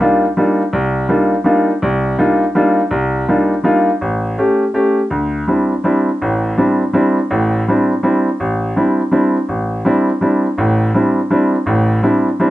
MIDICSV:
0, 0, Header, 1, 2, 480
1, 0, Start_track
1, 0, Tempo, 364520
1, 960, Time_signature, 3, 2, 24, 8
1, 16464, End_track
2, 0, Start_track
2, 0, Title_t, "Grand piano"
2, 0, Program_c, 0, 0
2, 8, Note_on_c, 0, 55, 55
2, 9, Note_on_c, 0, 58, 50
2, 12, Note_on_c, 0, 62, 48
2, 18, Note_on_c, 0, 65, 58
2, 20, Note_on_c, 0, 63, 44
2, 323, Note_off_c, 0, 55, 0
2, 324, Note_off_c, 0, 58, 0
2, 325, Note_off_c, 0, 62, 0
2, 328, Note_off_c, 0, 65, 0
2, 329, Note_off_c, 0, 63, 0
2, 488, Note_on_c, 0, 55, 53
2, 496, Note_on_c, 0, 58, 46
2, 496, Note_on_c, 0, 63, 46
2, 497, Note_on_c, 0, 62, 43
2, 504, Note_on_c, 0, 65, 51
2, 803, Note_off_c, 0, 55, 0
2, 807, Note_off_c, 0, 58, 0
2, 807, Note_off_c, 0, 63, 0
2, 808, Note_off_c, 0, 62, 0
2, 812, Note_off_c, 0, 65, 0
2, 960, Note_on_c, 0, 36, 69
2, 1374, Note_off_c, 0, 36, 0
2, 1433, Note_on_c, 0, 55, 55
2, 1438, Note_on_c, 0, 58, 48
2, 1440, Note_on_c, 0, 62, 43
2, 1443, Note_on_c, 0, 63, 44
2, 1452, Note_on_c, 0, 65, 53
2, 1756, Note_off_c, 0, 55, 0
2, 1759, Note_off_c, 0, 58, 0
2, 1760, Note_off_c, 0, 62, 0
2, 1761, Note_off_c, 0, 63, 0
2, 1766, Note_off_c, 0, 65, 0
2, 1901, Note_on_c, 0, 55, 48
2, 1914, Note_on_c, 0, 58, 47
2, 1914, Note_on_c, 0, 62, 49
2, 1918, Note_on_c, 0, 65, 52
2, 1919, Note_on_c, 0, 63, 50
2, 2230, Note_off_c, 0, 55, 0
2, 2237, Note_off_c, 0, 58, 0
2, 2237, Note_off_c, 0, 62, 0
2, 2239, Note_off_c, 0, 63, 0
2, 2239, Note_off_c, 0, 65, 0
2, 2401, Note_on_c, 0, 36, 71
2, 2815, Note_off_c, 0, 36, 0
2, 2879, Note_on_c, 0, 58, 46
2, 2880, Note_on_c, 0, 55, 50
2, 2880, Note_on_c, 0, 63, 52
2, 2880, Note_on_c, 0, 65, 58
2, 2886, Note_on_c, 0, 62, 48
2, 3200, Note_off_c, 0, 55, 0
2, 3200, Note_off_c, 0, 58, 0
2, 3200, Note_off_c, 0, 63, 0
2, 3200, Note_off_c, 0, 65, 0
2, 3203, Note_off_c, 0, 62, 0
2, 3356, Note_on_c, 0, 58, 52
2, 3361, Note_on_c, 0, 55, 54
2, 3366, Note_on_c, 0, 63, 51
2, 3368, Note_on_c, 0, 62, 45
2, 3370, Note_on_c, 0, 65, 58
2, 3678, Note_off_c, 0, 58, 0
2, 3681, Note_off_c, 0, 55, 0
2, 3683, Note_off_c, 0, 63, 0
2, 3684, Note_off_c, 0, 62, 0
2, 3685, Note_off_c, 0, 65, 0
2, 3828, Note_on_c, 0, 36, 67
2, 4248, Note_off_c, 0, 36, 0
2, 4325, Note_on_c, 0, 62, 50
2, 4326, Note_on_c, 0, 55, 48
2, 4327, Note_on_c, 0, 58, 46
2, 4336, Note_on_c, 0, 63, 46
2, 4337, Note_on_c, 0, 65, 52
2, 4643, Note_off_c, 0, 62, 0
2, 4644, Note_off_c, 0, 55, 0
2, 4644, Note_off_c, 0, 58, 0
2, 4649, Note_off_c, 0, 63, 0
2, 4649, Note_off_c, 0, 65, 0
2, 4789, Note_on_c, 0, 55, 51
2, 4797, Note_on_c, 0, 62, 46
2, 4797, Note_on_c, 0, 63, 52
2, 4798, Note_on_c, 0, 58, 52
2, 4805, Note_on_c, 0, 65, 60
2, 5115, Note_off_c, 0, 55, 0
2, 5119, Note_off_c, 0, 62, 0
2, 5119, Note_off_c, 0, 63, 0
2, 5120, Note_off_c, 0, 58, 0
2, 5123, Note_off_c, 0, 65, 0
2, 5285, Note_on_c, 0, 33, 63
2, 5697, Note_off_c, 0, 33, 0
2, 5769, Note_on_c, 0, 57, 55
2, 5775, Note_on_c, 0, 61, 50
2, 5776, Note_on_c, 0, 67, 57
2, 6085, Note_off_c, 0, 57, 0
2, 6088, Note_off_c, 0, 61, 0
2, 6089, Note_off_c, 0, 67, 0
2, 6242, Note_on_c, 0, 57, 54
2, 6249, Note_on_c, 0, 67, 56
2, 6253, Note_on_c, 0, 61, 48
2, 6562, Note_off_c, 0, 57, 0
2, 6565, Note_off_c, 0, 67, 0
2, 6568, Note_off_c, 0, 61, 0
2, 6723, Note_on_c, 0, 38, 57
2, 7136, Note_off_c, 0, 38, 0
2, 7211, Note_on_c, 0, 55, 45
2, 7219, Note_on_c, 0, 62, 45
2, 7220, Note_on_c, 0, 60, 43
2, 7226, Note_on_c, 0, 64, 50
2, 7527, Note_off_c, 0, 55, 0
2, 7531, Note_off_c, 0, 60, 0
2, 7531, Note_off_c, 0, 62, 0
2, 7534, Note_off_c, 0, 64, 0
2, 7687, Note_on_c, 0, 60, 44
2, 7692, Note_on_c, 0, 55, 48
2, 7702, Note_on_c, 0, 62, 46
2, 7702, Note_on_c, 0, 64, 58
2, 8005, Note_off_c, 0, 60, 0
2, 8007, Note_off_c, 0, 55, 0
2, 8012, Note_off_c, 0, 62, 0
2, 8012, Note_off_c, 0, 64, 0
2, 8186, Note_on_c, 0, 33, 60
2, 8188, Note_on_c, 0, 45, 56
2, 8589, Note_off_c, 0, 33, 0
2, 8590, Note_off_c, 0, 45, 0
2, 8657, Note_on_c, 0, 60, 45
2, 8660, Note_on_c, 0, 55, 53
2, 8664, Note_on_c, 0, 62, 48
2, 8668, Note_on_c, 0, 64, 51
2, 8970, Note_off_c, 0, 60, 0
2, 8971, Note_off_c, 0, 55, 0
2, 8973, Note_off_c, 0, 62, 0
2, 8975, Note_off_c, 0, 64, 0
2, 9130, Note_on_c, 0, 55, 53
2, 9133, Note_on_c, 0, 60, 52
2, 9140, Note_on_c, 0, 62, 48
2, 9143, Note_on_c, 0, 64, 60
2, 9446, Note_off_c, 0, 55, 0
2, 9448, Note_off_c, 0, 60, 0
2, 9451, Note_off_c, 0, 62, 0
2, 9453, Note_off_c, 0, 64, 0
2, 9619, Note_on_c, 0, 45, 68
2, 9621, Note_on_c, 0, 33, 64
2, 10025, Note_off_c, 0, 45, 0
2, 10026, Note_off_c, 0, 33, 0
2, 10117, Note_on_c, 0, 55, 50
2, 10124, Note_on_c, 0, 60, 47
2, 10128, Note_on_c, 0, 64, 51
2, 10129, Note_on_c, 0, 62, 49
2, 10420, Note_off_c, 0, 55, 0
2, 10423, Note_off_c, 0, 60, 0
2, 10425, Note_off_c, 0, 62, 0
2, 10425, Note_off_c, 0, 64, 0
2, 10575, Note_on_c, 0, 55, 52
2, 10579, Note_on_c, 0, 60, 45
2, 10580, Note_on_c, 0, 62, 42
2, 10586, Note_on_c, 0, 64, 57
2, 10888, Note_off_c, 0, 55, 0
2, 10890, Note_off_c, 0, 60, 0
2, 10891, Note_off_c, 0, 62, 0
2, 10894, Note_off_c, 0, 64, 0
2, 11062, Note_on_c, 0, 33, 61
2, 11466, Note_off_c, 0, 33, 0
2, 11536, Note_on_c, 0, 60, 43
2, 11541, Note_on_c, 0, 62, 42
2, 11544, Note_on_c, 0, 55, 49
2, 11551, Note_on_c, 0, 64, 58
2, 11849, Note_off_c, 0, 60, 0
2, 11851, Note_off_c, 0, 62, 0
2, 11853, Note_off_c, 0, 55, 0
2, 11856, Note_off_c, 0, 64, 0
2, 12003, Note_on_c, 0, 55, 47
2, 12010, Note_on_c, 0, 60, 47
2, 12011, Note_on_c, 0, 62, 43
2, 12016, Note_on_c, 0, 64, 57
2, 12322, Note_off_c, 0, 55, 0
2, 12325, Note_off_c, 0, 60, 0
2, 12326, Note_off_c, 0, 62, 0
2, 12328, Note_off_c, 0, 64, 0
2, 12492, Note_on_c, 0, 33, 58
2, 12901, Note_off_c, 0, 33, 0
2, 12969, Note_on_c, 0, 55, 51
2, 12980, Note_on_c, 0, 60, 48
2, 12981, Note_on_c, 0, 62, 45
2, 12986, Note_on_c, 0, 64, 60
2, 13284, Note_off_c, 0, 55, 0
2, 13290, Note_off_c, 0, 60, 0
2, 13290, Note_off_c, 0, 62, 0
2, 13293, Note_off_c, 0, 64, 0
2, 13446, Note_on_c, 0, 55, 46
2, 13450, Note_on_c, 0, 60, 44
2, 13458, Note_on_c, 0, 62, 47
2, 13461, Note_on_c, 0, 64, 54
2, 13763, Note_off_c, 0, 55, 0
2, 13765, Note_off_c, 0, 60, 0
2, 13769, Note_off_c, 0, 62, 0
2, 13770, Note_off_c, 0, 64, 0
2, 13928, Note_on_c, 0, 33, 62
2, 13935, Note_on_c, 0, 45, 64
2, 14338, Note_off_c, 0, 33, 0
2, 14341, Note_off_c, 0, 45, 0
2, 14411, Note_on_c, 0, 55, 51
2, 14414, Note_on_c, 0, 60, 47
2, 14417, Note_on_c, 0, 62, 47
2, 14421, Note_on_c, 0, 64, 55
2, 14725, Note_off_c, 0, 55, 0
2, 14726, Note_off_c, 0, 60, 0
2, 14728, Note_off_c, 0, 62, 0
2, 14730, Note_off_c, 0, 64, 0
2, 14887, Note_on_c, 0, 55, 50
2, 14892, Note_on_c, 0, 62, 50
2, 14893, Note_on_c, 0, 60, 48
2, 14898, Note_on_c, 0, 64, 58
2, 15202, Note_off_c, 0, 55, 0
2, 15205, Note_off_c, 0, 62, 0
2, 15206, Note_off_c, 0, 60, 0
2, 15208, Note_off_c, 0, 64, 0
2, 15355, Note_on_c, 0, 33, 60
2, 15361, Note_on_c, 0, 45, 69
2, 15770, Note_off_c, 0, 33, 0
2, 15774, Note_off_c, 0, 45, 0
2, 15840, Note_on_c, 0, 60, 47
2, 15842, Note_on_c, 0, 55, 49
2, 15848, Note_on_c, 0, 64, 59
2, 15851, Note_on_c, 0, 62, 52
2, 16159, Note_off_c, 0, 60, 0
2, 16160, Note_off_c, 0, 55, 0
2, 16163, Note_off_c, 0, 64, 0
2, 16164, Note_off_c, 0, 62, 0
2, 16323, Note_on_c, 0, 55, 50
2, 16328, Note_on_c, 0, 60, 50
2, 16333, Note_on_c, 0, 62, 50
2, 16333, Note_on_c, 0, 64, 58
2, 16464, Note_off_c, 0, 55, 0
2, 16464, Note_off_c, 0, 60, 0
2, 16464, Note_off_c, 0, 62, 0
2, 16464, Note_off_c, 0, 64, 0
2, 16464, End_track
0, 0, End_of_file